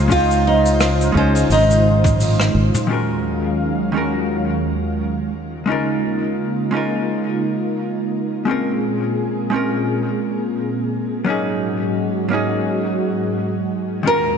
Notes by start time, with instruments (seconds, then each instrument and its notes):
Already playing: fretless electric bass C#2, analog synth pad C#3 D#4 F4 C5, nylon-string guitar G#4
0.08 hollow-body jazz guitar G#3 C#4 D#4, kick, open hi-hat, shaker
0.12 hollow-body jazz guitar F4 C5
0.30 open hi-hat, shaker
0.47 nylon-string guitar D#4
0.65 open hi-hat, shaker
0.80 cross-stick, open hi-hat, shaker
1.01 open hi-hat, shaker
1.12 fretless electric bass C#2, hollow-body jazz guitar G#3 C#4 D#4, kick
1.17 hollow-body jazz guitar F4 C5
1.35 open hi-hat, shaker
1.50 fretless electric bass G#1, nylon-string guitar D#4, open hi-hat, shaker
1.71 open hi-hat, shaker
2.04 kick, mid tom, open hi-hat, shaker
2.20 open hi-hat, shaker
2.40 cross-stick, shaker
2.55 fretless electric bass G#1
2.75 mid tom, open hi-hat, shaker
2.87 analog synth pad D#2 D#3 F#3 G#3 C#4 F5, hollow-body jazz guitar D#3 G#3 C#4 F4
2.91 hollow-body jazz guitar F#4 A#4
3.92 hollow-body jazz guitar D#3 G#3 C#4 F4
3.96 hollow-body jazz guitar F#4 A#4
5.34 analog synth pad C#3 A#3 D#4 F4
5.66 hollow-body jazz guitar G#3 C#4 D#4
5.70 hollow-body jazz guitar F4 A#4
6.71 hollow-body jazz guitar G#3 C#4 D#4
6.75 hollow-body jazz guitar F4 A#4
8.45 analog synth pad A#2 G#4, hollow-body jazz guitar G#3 C4 C#4
8.50 hollow-body jazz guitar F4 A#4
9.50 hollow-body jazz guitar G#3 C4 C#4
9.54 hollow-body jazz guitar F4 A#4
11.24 analog synth pad G#2 G#3 F#4, hollow-body jazz guitar F#3 A#3 C#4
11.29 hollow-body jazz guitar D#4 G#4
12.29 hollow-body jazz guitar F#3 A#3 C#4
12.33 hollow-body jazz guitar D#4 G#4
14.03 analog synth pad D#2 A#2 F#3 C#4 F5, hollow-body jazz guitar D#3 G#3 C#4 F4
14.08 hollow-body jazz guitar F#4 A#4